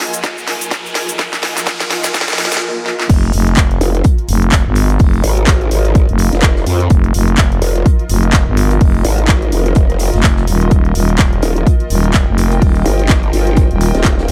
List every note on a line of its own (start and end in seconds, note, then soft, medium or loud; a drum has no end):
0.00 2.62 F4 medium
0.00 2.62 A#4 medium
0.00 2.62 D#5 medium
0.00 2.62 G#5 medium
0.00 snare medium
0.00 open hi-hat loud
0.00 riser medium
0.13 closed hi-hat medium
0.13 shaker medium
0.23 kick loud
0.23 snare medium
0.23 closed hi-hat medium
0.23 shaker medium
0.38 shaker soft
0.48 snare medium
0.48 open hi-hat loud
0.61 closed hi-hat medium
0.61 shaker medium
0.71 kick loud
0.71 snare medium
0.71 closed hi-hat medium
0.71 shaker medium
0.86 shaker soft
0.95 snare medium
0.95 open hi-hat loud
1.09 closed hi-hat medium
1.09 shaker medium
1.19 kick loud
1.19 snare medium
1.19 closed hi-hat medium
1.19 shaker medium
1.33 snare medium
1.33 shaker soft
1.43 snare medium
1.43 open hi-hat loud
1.57 snare medium
1.57 closed hi-hat medium
1.57 shaker medium
1.66 kick loud
1.66 snare medium
1.66 closed hi-hat medium
1.66 shaker medium
1.80 snare medium
1.80 shaker soft
1.91 snare loud
1.91 open hi-hat loud
2.04 snare medium
2.04 closed hi-hat medium
2.04 shaker medium
2.14 kick loud
2.14 snare loud
2.14 closed hi-hat medium
2.14 shaker medium
2.21 snare loud
2.28 snare medium
2.28 shaker soft
2.33 snare medium
2.38 snare loud
2.38 open hi-hat loud
2.45 snare medium
2.51 snare loud
2.51 closed hi-hat medium
2.51 shaker medium
2.57 snare loud
2.86 snare medium
2.99 snare medium
3.09 3.32 F1 loud
3.09 14.32 F4 medium
3.09 kick loud
3.09 closed hi-hat medium
3.09 crash loud
3.23 closed hi-hat soft
3.33 3.79 F1 loud
3.33 closed hi-hat medium
3.33 open hi-hat loud
3.47 14.32 A#4 medium
3.47 closed hi-hat medium
3.57 kick loud
3.57 snare loud
3.57 clap loud
3.57 closed hi-hat medium
3.71 closed hi-hat soft
3.81 4.03 F1 loud
3.81 14.32 D#5 medium
3.81 closed hi-hat medium
3.81 open hi-hat loud
3.95 closed hi-hat medium
4.04 kick loud
4.04 closed hi-hat medium
4.18 closed hi-hat soft
4.29 4.64 F1 loud
4.29 closed hi-hat medium
4.29 open hi-hat loud
4.42 closed hi-hat medium
4.52 kick loud
4.52 snare loud
4.52 clap loud
4.52 closed hi-hat medium
4.52 closed hi-hat loud
4.66 4.98 G1 loud
4.75 closed hi-hat medium
4.75 open hi-hat loud
4.90 closed hi-hat soft
4.90 closed hi-hat medium
4.99 5.22 F1 loud
4.99 kick loud
4.99 closed hi-hat medium
4.99 open hi-hat medium
5.14 closed hi-hat soft
5.24 5.70 G#1 loud
5.24 closed hi-hat medium
5.24 open hi-hat loud
5.37 closed hi-hat medium
5.47 kick loud
5.47 snare loud
5.47 clap loud
5.47 closed hi-hat medium
5.61 closed hi-hat soft
5.71 6.07 G#1 loud
5.71 closed hi-hat medium
5.71 open hi-hat loud
5.85 closed hi-hat medium
5.95 kick loud
5.95 closed hi-hat medium
6.09 6.31 F1 medium
6.09 closed hi-hat soft
6.19 closed hi-hat medium
6.19 open hi-hat loud
6.33 6.65 F1 loud
6.33 snare soft
6.33 closed hi-hat medium
6.42 kick loud
6.42 snare loud
6.42 clap loud
6.42 closed hi-hat medium
6.56 snare soft
6.67 6.89 F2 loud
6.67 closed hi-hat medium
6.67 open hi-hat loud
6.80 closed hi-hat medium
6.90 7.13 F1 loud
6.90 kick loud
6.90 closed hi-hat medium
7.04 closed hi-hat soft
7.14 7.60 F1 medium
7.14 closed hi-hat medium
7.14 open hi-hat loud
7.28 closed hi-hat medium
7.38 kick loud
7.38 snare loud
7.38 clap loud
7.38 closed hi-hat medium
7.52 closed hi-hat soft
7.62 7.84 F1 loud
7.62 closed hi-hat medium
7.62 open hi-hat loud
7.76 closed hi-hat medium
7.86 kick loud
7.86 closed hi-hat medium
7.99 closed hi-hat soft
8.09 8.45 F1 medium
8.09 closed hi-hat medium
8.09 open hi-hat loud
8.23 closed hi-hat medium
8.33 kick loud
8.33 snare loud
8.33 clap loud
8.33 closed hi-hat medium
8.47 8.79 G1 medium
8.57 closed hi-hat medium
8.57 open hi-hat loud
8.71 closed hi-hat medium
8.71 closed hi-hat soft
8.81 9.03 F1 loud
8.81 kick loud
8.81 closed hi-hat medium
8.81 open hi-hat medium
8.95 closed hi-hat soft
9.05 9.51 G#1 loud
9.05 closed hi-hat medium
9.05 open hi-hat loud
9.18 closed hi-hat soft
9.28 kick loud
9.28 snare loud
9.28 clap loud
9.28 closed hi-hat medium
9.42 closed hi-hat soft
9.52 9.75 F1 medium
9.52 closed hi-hat medium
9.52 open hi-hat loud
9.66 closed hi-hat soft
9.75 10.11 F1 loud
9.75 kick loud
9.75 closed hi-hat medium
9.90 closed hi-hat soft
9.99 closed hi-hat medium
9.99 open hi-hat loud
10.14 10.46 F1 loud
10.14 snare soft
10.14 closed hi-hat medium
10.23 kick loud
10.23 snare loud
10.23 clap loud
10.23 closed hi-hat medium
10.37 snare medium
10.47 10.70 D#1 loud
10.47 closed hi-hat medium
10.47 open hi-hat loud
10.61 closed hi-hat medium
10.71 10.94 D#1 loud
10.71 kick loud
10.71 closed hi-hat medium
10.85 closed hi-hat soft
10.95 11.41 D#1 loud
10.95 14.32 G5 medium
10.95 closed hi-hat medium
10.95 open hi-hat loud
11.09 closed hi-hat soft
11.18 kick loud
11.18 snare loud
11.18 clap loud
11.18 closed hi-hat medium
11.33 closed hi-hat soft
11.42 11.65 D#1 medium
11.42 closed hi-hat medium
11.42 open hi-hat loud
11.56 closed hi-hat soft
11.67 kick loud
11.67 closed hi-hat medium
11.80 closed hi-hat soft
11.90 12.26 D#1 loud
11.90 closed hi-hat medium
11.90 open hi-hat loud
12.04 closed hi-hat medium
12.13 kick loud
12.13 snare loud
12.13 clap loud
12.13 closed hi-hat medium
12.28 12.60 F1 medium
12.38 closed hi-hat medium
12.38 open hi-hat loud
12.51 closed hi-hat soft
12.51 closed hi-hat medium
12.62 12.84 D#1 loud
12.62 kick loud
12.62 closed hi-hat medium
12.62 open hi-hat medium
12.76 closed hi-hat soft
12.86 13.32 G1 loud
12.86 closed hi-hat medium
12.86 open hi-hat loud
12.99 closed hi-hat soft
13.09 kick loud
13.09 snare loud
13.09 clap loud
13.09 closed hi-hat medium
13.23 closed hi-hat soft
13.33 13.69 G1 loud
13.33 closed hi-hat medium
13.33 open hi-hat loud
13.47 closed hi-hat medium
13.57 kick loud
13.57 closed hi-hat medium
13.71 13.92 D#1 loud
13.71 closed hi-hat soft
13.81 closed hi-hat medium
13.81 open hi-hat loud
13.95 14.27 D#1 loud
13.95 snare soft
13.95 closed hi-hat medium
14.04 kick loud
14.04 snare loud
14.04 clap loud
14.04 closed hi-hat medium
14.19 snare medium
14.28 14.32 D#2 medium
14.28 closed hi-hat medium
14.28 open hi-hat loud